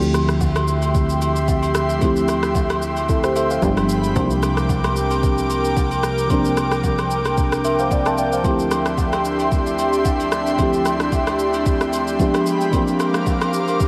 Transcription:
Already playing: analog synth bass D2, fm electric piano F3 A3 C4 E4 G4, analog synth pad G4 E5 G5 C6
0.02 shaker
0.14 cross-stick, high agogo, shaker
0.29 cross-stick, shaker
0.41 kick, low woodblock, shaker
0.56 cross-stick, high agogo, shaker
0.68 shaker
0.82 high agogo, shaker
0.95 kick, shaker
1.09 shaker
1.22 high agogo, shaker
1.36 shaker
1.48 kick, low woodblock, shaker
1.63 high agogo, shaker
1.75 cross-stick, shaker
1.89 shaker
1.99 fm electric piano F3 A3 C4, kick, high agogo, shaker
2.04 fm electric piano E4 G4
2.16 shaker
2.28 cross-stick, high agogo, shaker
2.43 cross-stick, shaker
2.55 kick, low woodblock, shaker
2.70 cross-stick, high agogo, shaker
2.82 shaker
2.97 high agogo, shaker
3.09 fm electric piano E4 A4, kick, shaker
3.24 fm electric piano G4 C5, cross-stick, shaker
3.36 fm electric piano A4 E5, high agogo, shaker
3.50 fm electric piano C5 F5, shaker
3.61 analog synth bass G1, fm electric piano F3 G#3 B3 D4 G4, analog synth pad G#3 B5, kick, low woodblock, shaker
3.77 cross-stick, high agogo, shaker
3.89 shaker
4.04 shaker
4.13 analog synth bass C2, fm electric piano F3 A#3 C4, analog synth pad A#4 D6, kick, high agogo, shaker
4.18 fm electric piano D4 G4
4.31 shaker
4.43 cross-stick, high agogo, shaker
4.57 cross-stick, shaker
4.69 kick, low woodblock, shaker
4.84 cross-stick, high agogo, shaker
4.96 shaker
5.11 high agogo, shaker
5.23 kick, shaker
5.38 shaker
5.50 high agogo, shaker
5.65 shaker
5.76 kick, low woodblock, shaker
5.91 high agogo, shaker
6.03 cross-stick, shaker
6.18 shaker
6.28 fm electric piano F3 A#3 C4, kick, high agogo, shaker
6.32 fm electric piano D4 A#4
6.45 shaker
6.57 cross-stick, high agogo, shaker
6.71 cross-stick, shaker
6.84 kick, low woodblock, shaker
6.99 cross-stick, high agogo, shaker
7.11 shaker
7.25 cross-stick, high agogo, shaker
7.38 kick, shaker
7.52 cross-stick, shaker
7.65 fm electric piano A#4 E5, high agogo, shaker
7.79 fm electric piano C5 F5, shaker
7.91 fm electric piano D5 G5, kick, low woodblock, shaker
8.05 fm electric piano E5 A5, cross-stick, high agogo, shaker
8.18 fm electric piano D5 G5, shaker
8.32 fm electric piano C5 F5, shaker
8.42 fm electric piano D2 F3 A3 C4, analog synth pad D4 G4 E5 C6, kick, high agogo, shaker
8.47 fm electric piano E4 G4
8.59 shaker
8.71 cross-stick, high agogo, shaker
8.86 cross-stick, shaker
8.98 kick, low woodblock, shaker
9.13 cross-stick, high agogo, shaker
9.25 shaker
9.39 high agogo, shaker
9.52 kick, shaker
9.67 shaker
9.79 high agogo, shaker
9.93 shaker
10.05 kick, low woodblock, shaker
10.20 high agogo, shaker
10.32 cross-stick, shaker
10.47 shaker
10.56 fm electric piano D2 F3 A3 C4, kick, high agogo, shaker
10.61 fm electric piano E4 G4
10.73 shaker
10.85 cross-stick, high agogo, shaker
11.00 cross-stick, shaker
11.12 kick, low woodblock, shaker
11.27 cross-stick, high agogo, shaker
11.39 shaker
11.53 high agogo, shaker
11.66 kick, shaker
11.81 cross-stick, shaker
11.93 high agogo, shaker
12.08 shaker
12.19 fm electric piano F3 G#3 B3 D4 G4, analog synth pad G#3 G4 B5, kick, low woodblock, shaker
12.34 cross-stick, high agogo, shaker
12.46 shaker
12.61 shaker
12.71 fm electric piano E3 A#3 C4, analog synth pad C4 A#4 F5 D6, kick, high agogo, shaker
12.75 fm electric piano F3 D4 G4
12.88 shaker
13.00 cross-stick, high agogo, shaker
13.14 cross-stick, shaker
13.26 kick, low woodblock, shaker
13.41 cross-stick, high agogo, shaker
13.54 shaker
13.68 high agogo, shaker
13.80 kick, shaker

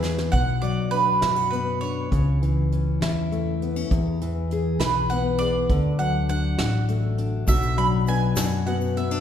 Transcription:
Already playing: upright bass E2, steel-string acoustic guitar E2 E3 B3 G#4, felt piano E4 G#4
0.03 felt piano B3, mandolin G#4, snare
0.18 snare
0.32 upright bass B1, steel-string acoustic guitar B2, mandolin F#5, kick, closed hi-hat
0.62 steel-string acoustic guitar F#3, mandolin D5, closed hi-hat
0.91 steel-string acoustic guitar D4, mandolin B4, closed hi-hat
1.21 upright bass F#2, steel-string acoustic guitar E4, snare, closed hi-hat
1.36 steel-string acoustic guitar F#4
1.51 steel-string acoustic guitar B3, mandolin B4, closed hi-hat
1.81 steel-string acoustic guitar D4, mandolin C#5, closed hi-hat
2.11 upright bass C#2, steel-string acoustic guitar C#3, kick, closed hi-hat
2.42 steel-string acoustic guitar E3, closed hi-hat
2.72 steel-string acoustic guitar C#4, closed hi-hat
3.01 upright bass E2, steel-string acoustic guitar E4, snare, closed hi-hat
3.31 steel-string acoustic guitar A3, closed hi-hat
3.62 steel-string acoustic guitar B3, closed hi-hat
3.76 steel-string acoustic guitar C#4
3.91 steel-string acoustic guitar E2, upright bass E2, kick, closed hi-hat
4.21 steel-string acoustic guitar E3, closed hi-hat
4.51 steel-string acoustic guitar G#4, closed hi-hat
4.79 upright bass B1, steel-string acoustic guitar G#4, mandolin B4, snare, closed hi-hat
5.10 steel-string acoustic guitar B3, mandolin F#5, closed hi-hat
5.39 steel-string acoustic guitar G#4, mandolin D5, closed hi-hat
5.69 upright bass D2, steel-string acoustic guitar D3, kick, closed hi-hat
5.99 steel-string acoustic guitar F#3, mandolin F#5, closed hi-hat
6.29 steel-string acoustic guitar D4, mandolin F#5, closed hi-hat
6.58 upright bass A1, steel-string acoustic guitar F#4, snare, closed hi-hat
6.88 steel-string acoustic guitar A3, closed hi-hat
7.18 steel-string acoustic guitar D4, closed hi-hat
7.47 upright bass B1, steel-string acoustic guitar B2, felt piano F#3 F#4, mandolin E5, kick, closed hi-hat, shaker
7.62 shaker
7.77 steel-string acoustic guitar F#3, felt piano D4, mandolin B5, closed hi-hat
8.07 felt piano B3, steel-string acoustic guitar D4, mandolin G#5, closed hi-hat, shaker
8.36 upright bass F#2, felt piano D4, steel-string acoustic guitar F#4, snare, closed hi-hat, shaker
8.66 steel-string acoustic guitar B3, felt piano F#4, mandolin F#5, closed hi-hat
8.81 shaker
8.97 felt piano B3, steel-string acoustic guitar B3, mandolin E5, closed hi-hat
9.11 steel-string acoustic guitar D4

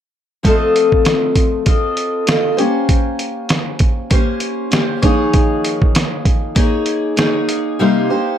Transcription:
0.43 steel-string acoustic guitar F3 A3 C4 F4 A4, kick, closed hi-hat
0.47 steel-string acoustic guitar D#5
0.76 closed hi-hat
0.92 kick
1.05 snare, closed hi-hat
1.36 kick, closed hi-hat
1.66 steel-string acoustic guitar C4 F4 A4 D#5, kick, closed hi-hat
1.97 closed hi-hat
2.27 steel-string acoustic guitar C4 F4 A4 D#5, snare, closed hi-hat
2.57 steel-string acoustic guitar C#4 G4 C5, closed hi-hat
2.61 steel-string acoustic guitar A#3
2.89 kick, closed hi-hat
3.19 closed hi-hat
3.49 snare, closed hi-hat
3.79 kick, closed hi-hat
4.10 steel-string acoustic guitar A#3 C#4 G4 C5, kick, closed hi-hat
4.40 closed hi-hat
4.71 steel-string acoustic guitar A#3 C#4 G4 C5, snare, closed hi-hat
5.02 steel-string acoustic guitar F3 A#3 D#4 G#4 C#5, kick, closed hi-hat
5.07 steel-string acoustic guitar D#3
5.34 kick, closed hi-hat
5.65 closed hi-hat
5.82 kick
5.95 snare, closed hi-hat
6.25 kick, closed hi-hat
6.55 steel-string acoustic guitar A#3 D#4 G#4 C#5, kick, closed hi-hat
6.86 closed hi-hat
7.16 steel-string acoustic guitar A#3 D#4 G#4 C#5, snare, closed hi-hat
7.49 closed hi-hat
7.79 steel-string acoustic guitar C3 G3 A#3 D#4 G4 C5
8.10 steel-string acoustic guitar A#3 D#4 G4 C5

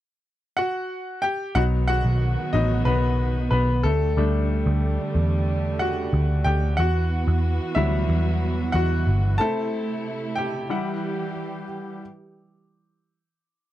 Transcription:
0.57 grand piano F#4 F#5
1.22 grand piano G4 G5
1.55 picked electric bass B1, string section D#3 B3 F#4, grand piano F#3 B3 D#4 F#4 F#5
1.88 grand piano F#4 F#5
2.05 picked electric bass B1
2.53 picked electric bass A1, grand piano F#3 B3 D#4 D#5
2.85 picked electric bass B1, grand piano B3 B4
3.51 picked electric bass B1, grand piano B3 B4
3.83 picked electric bass D2, string section D3 G3 A3, grand piano A3 A4
4.17 picked electric bass D2, grand piano G3 A3 D4
4.66 picked electric bass D2
5.15 picked electric bass E2
5.79 grand piano F#4 F#5
6.13 picked electric bass D2
6.44 picked electric bass D2, grand piano G4 G5
6.77 picked electric bass E2, string section E3 B3 F#4, grand piano F#4 F#5
7.28 picked electric bass E2
7.75 picked electric bass D2, grand piano F#3 G3 E4 E5
8.09 picked electric bass E2
8.72 picked electric bass E2, grand piano F#4 F#5
9.07 picked electric bass G1
9.38 string section C3 A3 E4, grand piano A3 C4 E4 A4 A5
10.36 grand piano G4 G5
10.70 string section E3 G3 G4, grand piano G3 E4 F#5

